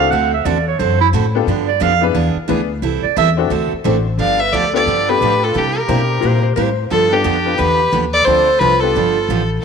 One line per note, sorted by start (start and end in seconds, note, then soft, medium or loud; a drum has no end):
0.00 0.10 C#2 medium
0.00 0.13 F5 loud
0.11 0.44 D2 medium
0.11 0.33 D3 medium
0.11 0.33 A3 medium
0.11 0.33 C4 medium
0.11 0.33 F#4 medium
0.11 0.33 A4 medium
0.11 0.32 F#5 loud
0.34 0.47 E5 medium
0.45 0.78 E2 medium
0.45 0.57 D3 medium
0.45 0.57 A3 medium
0.45 0.57 C4 medium
0.45 0.57 F#4 medium
0.45 0.57 A4 medium
0.45 0.67 D5 medium
0.68 0.80 C#5 medium
0.79 1.12 F#2 medium
0.79 1.00 D3 medium
0.79 1.01 A3 medium
0.79 1.01 C4 medium
0.79 1.01 F#4 medium
0.79 1.01 A4 medium
0.79 1.00 C5 medium
1.01 1.08 E4 loud
1.13 1.46 A2 medium
1.13 1.24 D3 medium
1.13 1.25 A3 medium
1.13 1.25 C4 medium
1.13 1.25 F#4 medium
1.13 1.25 A4 medium
1.35 1.46 B3 medium
1.35 1.46 D4 medium
1.35 1.46 F4 medium
1.35 1.47 G4 medium
1.35 1.47 A4 medium
1.47 1.80 G2 medium
1.47 1.69 D3 medium
1.47 1.69 F3 medium
1.47 1.69 B3 medium
1.47 1.69 D4 medium
1.47 1.69 G4 medium
1.68 1.84 D5 loud
1.80 2.14 F2 loud
1.80 1.92 D3 medium
1.80 1.92 F3 medium
1.80 1.92 B3 medium
1.80 1.92 D4 medium
1.80 1.92 G4 medium
1.80 2.03 F5 loud
2.01 2.13 B3 medium
2.01 2.13 D4 medium
2.01 2.14 E4 medium
2.01 2.14 G#4 medium
2.01 2.14 B4 loud
2.14 2.34 E2 medium
2.14 2.36 E3 medium
2.14 2.36 B3 medium
2.14 2.36 D4 medium
2.14 2.36 G#4 medium
2.35 muted upright bass stroke soft
2.48 2.82 D2 medium
2.48 2.60 E3 medium
2.48 2.68 B3 medium
2.48 2.60 B3 medium
2.48 2.68 D4 medium
2.48 2.60 D4 medium
2.48 2.68 E4 medium
2.48 2.68 G#4 medium
2.48 2.60 G#4 medium
2.48 2.68 B4 medium
2.82 3.02 C2 medium
2.82 3.04 E3 medium
2.82 3.04 G3 medium
2.82 3.04 C4 medium
2.82 3.04 E4 medium
2.82 3.04 A4 medium
3.03 3.16 D5 medium
3.03 muted upright bass stroke soft
3.16 3.49 E2 loud
3.16 3.28 E3 medium
3.16 3.28 G3 medium
3.16 3.28 C4 medium
3.16 3.28 E4 medium
3.16 3.28 A4 medium
3.16 3.30 E5 loud
3.37 3.49 C4 medium
3.37 3.49 D4 medium
3.37 3.49 E4 medium
3.37 3.50 F#4 medium
3.37 3.50 A4 medium
3.50 3.70 D2 medium
3.50 3.72 D3 medium
3.50 3.72 A3 medium
3.50 3.72 C4 medium
3.50 3.72 F#4 medium
3.50 3.72 A4 medium
3.72 muted upright bass stroke soft
3.84 4.17 A1 medium
3.84 3.96 D3 medium
3.84 3.96 A3 medium
3.84 4.04 C4 medium
3.84 3.96 C4 medium
3.84 4.04 D4 medium
3.84 4.04 E4 medium
3.84 4.04 F#4 medium
3.84 3.96 F#4 medium
3.84 3.96 A4 medium
3.84 4.04 C5 medium
4.18 4.51 G1 medium
4.18 4.40 D3 medium
4.18 4.40 F3 medium
4.18 4.40 B3 medium
4.18 4.40 D4 medium
4.18 4.40 G4 medium
4.18 4.42 D5 medium
4.18 4.41 F5 medium
4.40 4.55 B4 medium
4.40 4.54 E5 loud
4.53 4.86 D2 medium
4.53 4.64 D3 medium
4.53 4.64 F3 medium
4.53 4.65 B3 medium
4.53 4.65 D4 medium
4.53 4.65 G4 medium
4.53 4.74 A4 medium
4.53 4.74 D5 loud
4.73 4.85 B3 medium
4.73 4.85 D4 medium
4.73 4.86 F4 medium
4.73 4.85 G4 medium
4.73 4.86 A4 medium
4.73 5.13 A4 medium
4.73 5.10 D5 loud
4.86 5.20 G2 medium
4.86 5.08 D3 medium
4.86 5.08 F3 medium
4.86 5.09 B3 medium
4.86 5.09 D4 medium
4.86 5.09 G4 medium
5.08 5.53 B3 medium
5.08 5.53 D4 medium
5.08 5.53 F4 medium
5.08 5.53 G4 medium
5.08 5.46 G4 medium
5.08 5.53 A4 medium
5.08 5.45 B4 loud
5.21 5.54 A2 medium
5.21 5.32 D3 medium
5.21 5.33 F3 medium
5.21 5.33 B3 medium
5.21 5.33 D4 medium
5.21 5.33 G4 medium
5.43 5.59 F4 medium
5.43 5.59 A4 medium
5.54 5.76 C3 medium
5.54 5.88 C3 medium
5.54 5.76 G3 medium
5.54 5.76 A#3 medium
5.54 5.79 D4 medium
5.54 5.76 E4 medium
5.54 5.76 G4 medium
5.54 5.80 G4 medium
5.78 6.45 G4 medium
5.78 6.45 A#4 medium
5.88 6.22 B2 medium
5.88 6.00 C3 medium
5.88 6.00 G3 medium
5.88 6.00 A#3 medium
5.88 6.39 D4 medium
5.88 6.40 E4 medium
5.88 6.00 E4 medium
5.88 6.40 G4 medium
5.88 6.01 G4 medium
5.88 6.40 A#4 medium
5.88 6.39 C5 medium
6.21 6.56 A#2 medium
6.21 6.44 C3 medium
6.21 6.44 G3 medium
6.21 6.44 A#3 medium
6.21 6.44 E4 medium
6.21 6.41 G4 medium
6.21 6.45 G4 medium
6.21 6.42 C5 medium
6.42 6.55 G4 medium
6.42 6.55 C5 medium
6.56 6.90 A2 medium
6.56 6.68 C3 medium
6.56 6.68 G3 medium
6.56 6.68 A#3 medium
6.56 6.68 E4 medium
6.56 6.69 G4 medium
6.56 6.83 C5 medium
6.90 7.24 G2 medium
6.90 7.12 D3 medium
6.90 7.12 F3 medium
6.90 7.12 B3 medium
6.90 7.12 D4 medium
6.90 7.11 F4 medium
6.90 7.12 G4 medium
6.90 7.14 A4 loud
7.10 7.24 B3 medium
7.10 7.58 D4 medium
7.10 7.24 D4 medium
7.10 7.24 F4 medium
7.10 7.24 G4 medium
7.10 7.60 G4 medium
7.10 7.24 A4 medium
7.24 7.58 F2 medium
7.24 7.36 D3 medium
7.24 7.36 F3 medium
7.24 7.36 B3 medium
7.24 7.36 D4 medium
7.24 7.36 G4 medium
7.45 7.57 B3 medium
7.45 7.57 D4 medium
7.45 7.58 F4 medium
7.45 7.58 G4 medium
7.45 7.58 B4 medium
7.56 7.92 E2 medium
7.56 7.80 D3 medium
7.56 7.80 F3 medium
7.56 7.80 B3 medium
7.56 7.80 D4 medium
7.56 7.92 G4 medium
7.56 7.80 G4 medium
7.56 7.93 B4 loud
7.92 8.26 D#2 medium
7.92 8.04 D3 medium
7.92 8.04 F3 medium
7.92 8.04 B3 medium
7.92 8.04 D4 medium
7.92 8.04 G4 medium
8.12 8.25 A4 medium
8.12 8.26 D5 loud
8.25 8.60 D2 medium
8.25 8.48 D3 medium
8.25 8.48 F3 medium
8.25 8.46 C4 medium
8.25 8.48 C4 medium
8.25 8.46 D4 medium
8.25 8.48 D4 medium
8.25 8.46 F4 soft
8.25 8.61 A4 medium
8.25 8.46 A4 medium
8.25 8.49 A4 medium
8.25 8.60 C5 loud
8.25 8.46 C5 medium
8.58 8.94 C2 medium
8.58 8.72 D3 medium
8.58 8.72 F3 medium
8.58 8.72 C4 medium
8.58 8.72 D4 medium
8.58 8.81 F4 medium
8.58 8.73 A4 medium
8.58 8.81 B4 loud
8.80 8.94 B3 medium
8.80 8.94 D4 medium
8.80 9.50 F4 medium
8.80 8.94 F4 medium
8.80 8.94 G4 medium
8.80 9.49 A4 loud
8.80 8.94 B4 medium
8.95 9.28 G1 medium
8.95 9.17 D3 medium
8.95 9.17 F3 medium
8.95 9.17 B3 medium
8.95 9.17 D4 medium
8.95 9.17 G4 medium
9.29 9.62 A1 medium
9.29 9.41 D3 medium
9.29 9.41 F3 medium
9.29 9.41 B3 medium
9.29 9.41 D4 medium
9.29 9.41 G4 medium
9.61 9.64 E4 medium
9.61 9.64 A4 medium